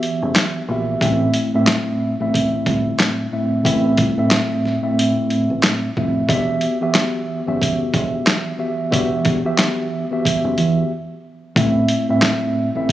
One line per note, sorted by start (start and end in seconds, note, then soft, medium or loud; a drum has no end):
0.00 0.61 E3 medium
0.00 0.61 B3 medium
0.00 0.61 F#4 medium
0.00 0.62 G4 medium
0.00 0.62 E5 loud
0.00 closed hi-hat soft
0.22 0.33 F#1 medium
0.36 snare loud
0.36 clap medium
0.36 closed hi-hat medium
0.68 0.94 A#1 loud
0.68 1.00 E3 medium
0.68 1.00 B3 medium
0.68 1.00 F#4 medium
0.68 1.01 G4 medium
0.68 1.01 E5 medium
1.01 1.27 A1 loud
1.01 1.49 A2 medium
1.01 1.49 A3 medium
1.01 1.50 C4 medium
1.01 1.50 E4 medium
1.01 1.50 E5 loud
1.01 kick loud
1.01 closed hi-hat medium
1.34 closed hi-hat medium
1.54 2.14 A2 medium
1.54 2.14 A3 medium
1.54 2.14 C4 medium
1.54 2.14 E4 medium
1.54 2.15 E5 loud
1.67 snare loud
1.67 clap loud
1.67 closed hi-hat medium
2.20 2.56 A1 medium
2.20 3.25 A2 medium
2.20 3.25 A3 medium
2.20 3.25 C4 medium
2.20 3.25 E4 medium
2.20 3.26 E5 loud
2.34 kick medium
2.34 closed hi-hat loud
2.66 2.92 G1 medium
2.66 kick medium
2.66 closed hi-hat soft
3.00 snare loud
3.00 clap medium
3.00 closed hi-hat medium
3.31 3.62 A2 medium
3.31 3.63 A3 medium
3.31 3.63 C4 medium
3.31 3.63 E4 medium
3.31 3.64 E5 medium
3.63 3.91 A1 loud
3.63 4.12 A2 medium
3.63 4.13 A3 medium
3.63 4.13 C4 medium
3.63 4.13 E4 medium
3.63 4.13 E5 loud
3.63 kick loud
3.63 closed hi-hat medium
3.97 4.14 G1 medium
3.97 kick medium
3.97 closed hi-hat medium
4.17 4.77 A2 loud
4.17 4.77 A3 medium
4.17 4.78 C4 medium
4.17 4.78 E4 medium
4.17 4.78 E5 loud
4.31 snare loud
4.31 clap loud
4.31 closed hi-hat medium
4.65 snare soft
4.82 5.87 A2 medium
4.82 5.88 A3 medium
4.82 5.88 C4 medium
4.82 5.88 E4 medium
4.82 5.88 E5 loud
4.99 closed hi-hat loud
5.30 closed hi-hat soft
5.50 5.60 A1 medium
5.63 snare loud
5.63 clap medium
5.63 closed hi-hat medium
5.96 6.22 F1 loud
5.96 6.27 A2 medium
5.96 6.27 A3 medium
5.96 6.27 C4 medium
5.96 6.28 E4 medium
5.96 6.28 E5 medium
5.96 kick medium
6.28 6.54 E1 loud
6.28 6.76 E3 medium
6.28 6.76 B3 medium
6.28 6.77 F#4 medium
6.28 6.77 G4 medium
6.28 6.77 E5 loud
6.28 kick loud
6.28 closed hi-hat medium
6.61 closed hi-hat medium
6.81 7.41 E3 medium
6.81 7.41 B3 medium
6.81 7.41 F#4 medium
6.81 7.42 G4 medium
6.81 7.42 E5 loud
6.95 snare loud
6.95 clap medium
6.95 closed hi-hat medium
7.46 7.83 F#1 medium
7.46 8.52 E3 medium
7.46 8.52 B3 medium
7.46 8.52 F#4 medium
7.46 8.52 G4 medium
7.46 8.53 E5 loud
7.62 kick loud
7.62 closed hi-hat loud
7.94 8.19 E1 medium
7.94 kick medium
7.94 closed hi-hat soft
8.27 snare loud
8.27 clap medium
8.27 closed hi-hat medium
8.58 8.90 E3 medium
8.58 8.90 B3 medium
8.58 8.90 F#4 medium
8.58 8.90 G4 medium
8.58 8.91 E5 medium
8.91 9.18 E1 loud
8.91 9.40 E3 loud
8.91 9.40 B3 medium
8.91 9.40 F#4 medium
8.91 9.40 G4 medium
8.91 9.41 E5 loud
8.91 kick loud
8.91 closed hi-hat medium
9.25 9.41 E1 medium
9.25 kick medium
9.25 closed hi-hat medium
9.44 10.05 E3 medium
9.44 10.05 B3 medium
9.44 10.05 F#4 medium
9.44 10.05 G4 medium
9.44 10.05 E5 loud
9.59 snare loud
9.59 clap medium
9.59 closed hi-hat medium
10.11 10.90 E3 medium
10.11 10.90 B3 medium
10.11 10.91 F#4 medium
10.11 10.91 G4 medium
10.11 10.91 E5 loud
10.25 kick medium
10.25 closed hi-hat loud
10.44 10.55 F#1 medium
10.58 10.83 E2 loud
10.58 closed hi-hat soft
11.56 11.82 A1 loud
11.56 12.04 A2 medium
11.56 12.04 A3 medium
11.56 12.05 C4 medium
11.56 12.05 E4 medium
11.56 12.05 E5 loud
11.56 kick loud
11.56 closed hi-hat medium
11.88 closed hi-hat medium
12.09 12.69 A2 medium
12.09 12.69 A3 medium
12.09 12.69 C4 medium
12.09 12.69 E4 medium
12.09 12.70 E5 loud
12.22 snare loud
12.22 clap medium
12.22 closed hi-hat medium
12.75 12.92 A1 medium
12.75 12.92 A2 medium
12.75 12.92 A3 medium
12.75 12.92 C4 medium
12.75 12.92 E4 medium
12.75 12.92 E5 loud